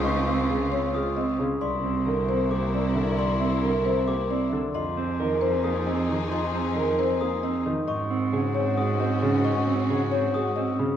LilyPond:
<<
  \new Staff \with { instrumentName = "Glockenspiel" } { \time 7/8 \key aes \mixolydian \tempo 4 = 134 des'''8 r4. ees'''8 r4 | c'''8 r4. d'''8 r4 | c'''8 r4. d'''8 r4 | c'''8 r4. ees'''8 r4 |
c'''8 r4. ees'''8 r4 | des'''8 r4. ees'''8 r4 | des'''8 r4. ees'''8 r4 | }
  \new Staff \with { instrumentName = "Marimba" } { \time 7/8 \key aes \mixolydian ees''8 r4 des''8 r8 ees''8 r8 | d''8 r4 c''8 r8 d''8 r8 | d''8 r4 c''8 r8 d''8 r8 | ees''8 r4 c''8 r8 ees''8 r8 |
ees''8 r4 c''8 r8 ees''8 r8 | ees''8 r4 des''8 r8 ees''8 r8 | ees''8 r4 des''8 r8 ees''8 r8 | }
  \new Staff \with { instrumentName = "String section" } { \time 7/8 \key aes \mixolydian <c' f'>2. r8 | <e' bes'>2.~ <e' bes'>8~ | <e' bes'>2. r8 | <ees' aes'>2.~ <ees' aes'>8~ |
<ees' aes'>2. r8 | <des' ges'>2.~ <des' ges'>8~ | <des' ges'>2. r8 | }
  \new Staff \with { instrumentName = "Clean electric guitar" } { \time 7/8 \key aes \mixolydian ees'8 c'8 aes'8 c'8 f'8 c'8 des'8 | e'8 c'8 bes'8 c'8 g'8 c'8 d'8 | e'8 c'8 bes'8 c'8 g'8 c'8 d'8 | f'8 c'8 bes'8 c'8 aes'8 c'8 ees'8 |
f'8 c'8 bes'8 c'8 aes'8 c'8 ees'8 | ees'8 c'8 aes'8 c'8 ges'8 c'8 des'8 | ees'8 c'8 aes'8 c'8 ges'8 c'8 des'8 | }
  \new Staff \with { instrumentName = "Grand piano" } { \clef bass \time 7/8 \key aes \mixolydian r4 des8 r8 aes8 r8 des8 | r4 d8 r8 bes8 r8 d8 | r4 d8 r8 bes8 r8 d8 | r4 ees8 r8 bes8 r8 ees8 |
r4 ees8 r8 bes8 r8 ees8 | r4 des8 r8 aes8 r8 des8 | r4 des8 r8 aes8 r8 des8 | }
  \new Staff \with { instrumentName = "Cello" } { \clef bass \time 7/8 \key aes \mixolydian des,2.~ des,8 | c,2.~ c,8~ | c,2.~ c,8 | f,2.~ f,8~ |
f,2.~ f,8 | aes,2.~ aes,8~ | aes,2.~ aes,8 | }
>>